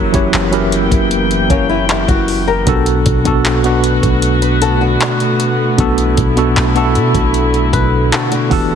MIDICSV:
0, 0, Header, 1, 6, 480
1, 0, Start_track
1, 0, Tempo, 779221
1, 1644, Time_signature, 4, 2, 24, 8
1, 5390, End_track
2, 0, Start_track
2, 0, Title_t, "Nylon-string guitar"
2, 0, Program_c, 0, 24
2, 924, Note_on_c, 0, 61, 80
2, 928, Note_on_c, 0, 58, 67
2, 1038, Note_off_c, 0, 61, 0
2, 1040, Note_off_c, 0, 58, 0
2, 1044, Note_on_c, 0, 64, 76
2, 1048, Note_on_c, 0, 61, 66
2, 1158, Note_off_c, 0, 64, 0
2, 1160, Note_off_c, 0, 61, 0
2, 1163, Note_on_c, 0, 67, 85
2, 1167, Note_on_c, 0, 64, 74
2, 1278, Note_off_c, 0, 67, 0
2, 1280, Note_off_c, 0, 64, 0
2, 1284, Note_on_c, 0, 66, 78
2, 1512, Note_off_c, 0, 66, 0
2, 1525, Note_on_c, 0, 70, 76
2, 1528, Note_on_c, 0, 67, 69
2, 1752, Note_off_c, 0, 70, 0
2, 1754, Note_off_c, 0, 67, 0
2, 2723, Note_on_c, 0, 71, 74
2, 2838, Note_off_c, 0, 71, 0
2, 2844, Note_on_c, 0, 69, 92
2, 2847, Note_on_c, 0, 66, 76
2, 2956, Note_off_c, 0, 66, 0
2, 2958, Note_off_c, 0, 69, 0
2, 2963, Note_on_c, 0, 66, 76
2, 2967, Note_on_c, 0, 62, 67
2, 3659, Note_off_c, 0, 66, 0
2, 3661, Note_off_c, 0, 62, 0
2, 4762, Note_on_c, 0, 71, 84
2, 4991, Note_off_c, 0, 71, 0
2, 5003, Note_on_c, 0, 69, 90
2, 5007, Note_on_c, 0, 66, 75
2, 5115, Note_off_c, 0, 66, 0
2, 5117, Note_off_c, 0, 69, 0
2, 5123, Note_on_c, 0, 66, 81
2, 5126, Note_on_c, 0, 62, 70
2, 5351, Note_off_c, 0, 66, 0
2, 5353, Note_off_c, 0, 62, 0
2, 5390, End_track
3, 0, Start_track
3, 0, Title_t, "Tine electric piano"
3, 0, Program_c, 1, 4
3, 0, Control_c, 1, 64, 127
3, 0, Note_on_c, 1, 54, 92
3, 0, Note_on_c, 1, 61, 85
3, 0, Note_on_c, 1, 64, 89
3, 0, Note_on_c, 1, 67, 86
3, 0, Note_on_c, 1, 70, 103
3, 0, Note_on_c, 1, 76, 61
3, 76, Note_off_c, 1, 54, 0
3, 76, Note_on_c, 1, 54, 89
3, 81, Note_off_c, 1, 61, 0
3, 81, Note_on_c, 1, 61, 75
3, 84, Note_off_c, 1, 64, 0
3, 84, Note_on_c, 1, 64, 77
3, 89, Note_off_c, 1, 67, 0
3, 89, Note_on_c, 1, 67, 77
3, 94, Note_on_c, 1, 73, 93
3, 269, Note_off_c, 1, 54, 0
3, 272, Note_off_c, 1, 61, 0
3, 274, Note_off_c, 1, 64, 0
3, 276, Note_off_c, 1, 67, 0
3, 278, Note_off_c, 1, 73, 0
3, 316, Note_on_c, 1, 54, 88
3, 320, Note_on_c, 1, 61, 79
3, 325, Note_on_c, 1, 64, 77
3, 328, Note_on_c, 1, 67, 81
3, 332, Note_off_c, 1, 70, 0
3, 332, Note_on_c, 1, 70, 98
3, 1078, Note_off_c, 1, 54, 0
3, 1080, Note_off_c, 1, 61, 0
3, 1082, Note_off_c, 1, 64, 0
3, 1084, Note_off_c, 1, 67, 0
3, 1086, Note_off_c, 1, 70, 0
3, 1638, Note_on_c, 1, 47, 85
3, 1642, Note_on_c, 1, 59, 84
3, 1646, Note_on_c, 1, 62, 81
3, 1651, Note_on_c, 1, 66, 82
3, 1652, Control_c, 1, 64, 0
3, 1655, Note_on_c, 1, 69, 99
3, 1656, Note_off_c, 1, 76, 0
3, 1772, Control_c, 1, 64, 127
3, 1925, Note_off_c, 1, 47, 0
3, 1927, Note_off_c, 1, 59, 0
3, 1929, Note_off_c, 1, 62, 0
3, 1932, Note_off_c, 1, 66, 0
3, 1934, Note_off_c, 1, 69, 0
3, 1999, Note_on_c, 1, 47, 82
3, 2003, Note_on_c, 1, 59, 79
3, 2007, Note_on_c, 1, 62, 77
3, 2011, Note_on_c, 1, 66, 80
3, 2015, Note_on_c, 1, 69, 92
3, 2191, Note_off_c, 1, 47, 0
3, 2193, Note_off_c, 1, 59, 0
3, 2195, Note_off_c, 1, 62, 0
3, 2197, Note_off_c, 1, 66, 0
3, 2199, Note_off_c, 1, 69, 0
3, 2240, Note_on_c, 1, 47, 88
3, 2244, Note_on_c, 1, 59, 79
3, 2249, Note_on_c, 1, 62, 77
3, 2252, Note_on_c, 1, 66, 83
3, 2256, Note_on_c, 1, 71, 96
3, 3000, Note_off_c, 1, 47, 0
3, 3002, Note_off_c, 1, 59, 0
3, 3004, Note_off_c, 1, 62, 0
3, 3006, Note_off_c, 1, 66, 0
3, 3008, Note_off_c, 1, 71, 0
3, 3558, Note_on_c, 1, 47, 89
3, 3562, Note_on_c, 1, 59, 79
3, 3566, Note_on_c, 1, 62, 78
3, 3570, Note_on_c, 1, 66, 82
3, 3574, Note_on_c, 1, 69, 98
3, 3845, Note_off_c, 1, 47, 0
3, 3847, Note_off_c, 1, 59, 0
3, 3849, Note_off_c, 1, 62, 0
3, 3851, Note_off_c, 1, 66, 0
3, 3853, Note_off_c, 1, 69, 0
3, 3916, Note_on_c, 1, 47, 84
3, 3921, Note_on_c, 1, 59, 76
3, 3925, Note_on_c, 1, 62, 75
3, 3928, Note_on_c, 1, 66, 79
3, 3933, Note_on_c, 1, 69, 90
3, 4109, Note_off_c, 1, 47, 0
3, 4112, Note_off_c, 1, 59, 0
3, 4114, Note_off_c, 1, 62, 0
3, 4116, Note_off_c, 1, 66, 0
3, 4118, Note_off_c, 1, 69, 0
3, 4156, Note_on_c, 1, 47, 83
3, 4160, Note_on_c, 1, 59, 81
3, 4164, Note_on_c, 1, 62, 82
3, 4168, Note_on_c, 1, 66, 83
3, 4173, Note_on_c, 1, 69, 99
3, 4918, Note_off_c, 1, 47, 0
3, 4920, Note_off_c, 1, 59, 0
3, 4922, Note_off_c, 1, 62, 0
3, 4924, Note_off_c, 1, 66, 0
3, 4926, Note_off_c, 1, 69, 0
3, 5235, Note_on_c, 1, 52, 93
3, 5239, Note_on_c, 1, 59, 88
3, 5242, Note_on_c, 1, 62, 86
3, 5246, Note_on_c, 1, 66, 84
3, 5249, Note_on_c, 1, 67, 83
3, 5252, Note_on_c, 1, 69, 103
3, 5253, Control_c, 1, 64, 0
3, 5345, Control_c, 1, 64, 127
3, 5390, Note_off_c, 1, 52, 0
3, 5390, Note_off_c, 1, 59, 0
3, 5390, Note_off_c, 1, 62, 0
3, 5390, Note_off_c, 1, 66, 0
3, 5390, Note_off_c, 1, 67, 0
3, 5390, Note_off_c, 1, 69, 0
3, 5390, End_track
4, 0, Start_track
4, 0, Title_t, "String section"
4, 0, Program_c, 2, 48
4, 0, Note_on_c, 2, 52, 85
4, 0, Note_on_c, 2, 54, 94
4, 0, Note_on_c, 2, 58, 78
4, 0, Note_on_c, 2, 59, 73
4, 435, Note_off_c, 2, 54, 0
4, 445, Note_on_c, 2, 79, 84
4, 1619, Note_off_c, 2, 59, 0
4, 1623, Note_off_c, 2, 52, 0
4, 1623, Note_off_c, 2, 58, 0
4, 1633, Note_off_c, 2, 79, 0
4, 1642, Note_on_c, 2, 66, 89
4, 1643, Note_on_c, 2, 50, 78
4, 1643, Note_on_c, 2, 57, 73
4, 1643, Note_on_c, 2, 59, 73
4, 3544, Note_off_c, 2, 66, 0
4, 3563, Note_on_c, 2, 64, 92
4, 5219, Note_off_c, 2, 59, 0
4, 5227, Note_off_c, 2, 64, 0
4, 5243, Note_on_c, 2, 59, 76
4, 5245, Note_on_c, 2, 78, 93
4, 5390, Note_off_c, 2, 50, 0
4, 5390, Note_off_c, 2, 57, 0
4, 5390, Note_off_c, 2, 59, 0
4, 5390, Note_off_c, 2, 78, 0
4, 5390, End_track
5, 0, Start_track
5, 0, Title_t, "808-style bass"
5, 0, Program_c, 3, 38
5, 0, Note_on_c, 3, 30, 112
5, 197, Note_off_c, 3, 30, 0
5, 207, Note_on_c, 3, 30, 105
5, 551, Note_off_c, 3, 30, 0
5, 565, Note_on_c, 3, 30, 108
5, 910, Note_off_c, 3, 30, 0
5, 925, Note_on_c, 3, 30, 101
5, 1270, Note_off_c, 3, 30, 0
5, 1285, Note_on_c, 3, 30, 104
5, 1630, Note_off_c, 3, 30, 0
5, 1646, Note_on_c, 3, 35, 112
5, 1876, Note_off_c, 3, 35, 0
5, 1887, Note_on_c, 3, 35, 107
5, 2462, Note_off_c, 3, 35, 0
5, 2484, Note_on_c, 3, 35, 101
5, 3060, Note_off_c, 3, 35, 0
5, 3565, Note_on_c, 3, 35, 110
5, 3795, Note_off_c, 3, 35, 0
5, 3807, Note_on_c, 3, 35, 109
5, 4036, Note_off_c, 3, 35, 0
5, 4046, Note_on_c, 3, 35, 106
5, 4286, Note_on_c, 3, 47, 100
5, 4295, Note_off_c, 3, 35, 0
5, 4399, Note_off_c, 3, 47, 0
5, 4403, Note_on_c, 3, 35, 104
5, 4749, Note_off_c, 3, 35, 0
5, 4764, Note_on_c, 3, 35, 101
5, 4995, Note_off_c, 3, 35, 0
5, 5245, Note_on_c, 3, 28, 105
5, 5390, Note_off_c, 3, 28, 0
5, 5390, End_track
6, 0, Start_track
6, 0, Title_t, "Drums"
6, 85, Note_on_c, 9, 36, 96
6, 85, Note_on_c, 9, 42, 58
6, 147, Note_off_c, 9, 36, 0
6, 147, Note_off_c, 9, 42, 0
6, 204, Note_on_c, 9, 42, 71
6, 209, Note_on_c, 9, 39, 123
6, 266, Note_off_c, 9, 42, 0
6, 271, Note_off_c, 9, 39, 0
6, 324, Note_on_c, 9, 42, 48
6, 386, Note_off_c, 9, 42, 0
6, 446, Note_on_c, 9, 42, 67
6, 507, Note_off_c, 9, 42, 0
6, 564, Note_on_c, 9, 36, 96
6, 565, Note_on_c, 9, 42, 59
6, 625, Note_off_c, 9, 36, 0
6, 627, Note_off_c, 9, 42, 0
6, 684, Note_on_c, 9, 42, 69
6, 745, Note_off_c, 9, 42, 0
6, 806, Note_on_c, 9, 42, 44
6, 867, Note_off_c, 9, 42, 0
6, 924, Note_on_c, 9, 36, 86
6, 926, Note_on_c, 9, 42, 62
6, 986, Note_off_c, 9, 36, 0
6, 987, Note_off_c, 9, 42, 0
6, 1164, Note_on_c, 9, 42, 85
6, 1170, Note_on_c, 9, 39, 116
6, 1226, Note_off_c, 9, 42, 0
6, 1231, Note_off_c, 9, 39, 0
6, 1283, Note_on_c, 9, 36, 94
6, 1286, Note_on_c, 9, 42, 55
6, 1345, Note_off_c, 9, 36, 0
6, 1347, Note_off_c, 9, 42, 0
6, 1405, Note_on_c, 9, 46, 67
6, 1467, Note_off_c, 9, 46, 0
6, 1643, Note_on_c, 9, 42, 71
6, 1644, Note_on_c, 9, 36, 127
6, 1705, Note_off_c, 9, 42, 0
6, 1706, Note_off_c, 9, 36, 0
6, 1763, Note_on_c, 9, 42, 55
6, 1825, Note_off_c, 9, 42, 0
6, 1883, Note_on_c, 9, 42, 76
6, 1886, Note_on_c, 9, 36, 102
6, 1945, Note_off_c, 9, 42, 0
6, 1948, Note_off_c, 9, 36, 0
6, 2004, Note_on_c, 9, 36, 103
6, 2004, Note_on_c, 9, 42, 56
6, 2066, Note_off_c, 9, 36, 0
6, 2066, Note_off_c, 9, 42, 0
6, 2124, Note_on_c, 9, 42, 68
6, 2128, Note_on_c, 9, 39, 127
6, 2185, Note_off_c, 9, 42, 0
6, 2190, Note_off_c, 9, 39, 0
6, 2243, Note_on_c, 9, 42, 50
6, 2305, Note_off_c, 9, 42, 0
6, 2363, Note_on_c, 9, 42, 68
6, 2425, Note_off_c, 9, 42, 0
6, 2483, Note_on_c, 9, 36, 97
6, 2484, Note_on_c, 9, 42, 59
6, 2544, Note_off_c, 9, 36, 0
6, 2546, Note_off_c, 9, 42, 0
6, 2601, Note_on_c, 9, 42, 66
6, 2663, Note_off_c, 9, 42, 0
6, 2723, Note_on_c, 9, 42, 45
6, 2785, Note_off_c, 9, 42, 0
6, 2844, Note_on_c, 9, 42, 66
6, 2905, Note_off_c, 9, 42, 0
6, 3083, Note_on_c, 9, 42, 84
6, 3089, Note_on_c, 9, 39, 111
6, 3145, Note_off_c, 9, 42, 0
6, 3150, Note_off_c, 9, 39, 0
6, 3205, Note_on_c, 9, 42, 55
6, 3266, Note_off_c, 9, 42, 0
6, 3325, Note_on_c, 9, 42, 61
6, 3386, Note_off_c, 9, 42, 0
6, 3563, Note_on_c, 9, 36, 121
6, 3563, Note_on_c, 9, 42, 70
6, 3625, Note_off_c, 9, 36, 0
6, 3625, Note_off_c, 9, 42, 0
6, 3683, Note_on_c, 9, 42, 59
6, 3745, Note_off_c, 9, 42, 0
6, 3803, Note_on_c, 9, 42, 78
6, 3805, Note_on_c, 9, 36, 99
6, 3865, Note_off_c, 9, 42, 0
6, 3867, Note_off_c, 9, 36, 0
6, 3924, Note_on_c, 9, 42, 59
6, 3986, Note_off_c, 9, 42, 0
6, 4043, Note_on_c, 9, 42, 70
6, 4048, Note_on_c, 9, 39, 122
6, 4105, Note_off_c, 9, 42, 0
6, 4109, Note_off_c, 9, 39, 0
6, 4162, Note_on_c, 9, 42, 50
6, 4224, Note_off_c, 9, 42, 0
6, 4283, Note_on_c, 9, 42, 69
6, 4345, Note_off_c, 9, 42, 0
6, 4402, Note_on_c, 9, 36, 94
6, 4404, Note_on_c, 9, 42, 56
6, 4463, Note_off_c, 9, 36, 0
6, 4465, Note_off_c, 9, 42, 0
6, 4522, Note_on_c, 9, 42, 68
6, 4583, Note_off_c, 9, 42, 0
6, 4644, Note_on_c, 9, 42, 44
6, 4706, Note_off_c, 9, 42, 0
6, 4762, Note_on_c, 9, 36, 91
6, 4764, Note_on_c, 9, 42, 68
6, 4824, Note_off_c, 9, 36, 0
6, 4826, Note_off_c, 9, 42, 0
6, 5005, Note_on_c, 9, 42, 83
6, 5010, Note_on_c, 9, 39, 118
6, 5066, Note_off_c, 9, 42, 0
6, 5071, Note_off_c, 9, 39, 0
6, 5123, Note_on_c, 9, 42, 56
6, 5185, Note_off_c, 9, 42, 0
6, 5243, Note_on_c, 9, 36, 113
6, 5245, Note_on_c, 9, 46, 64
6, 5305, Note_off_c, 9, 36, 0
6, 5307, Note_off_c, 9, 46, 0
6, 5390, End_track
0, 0, End_of_file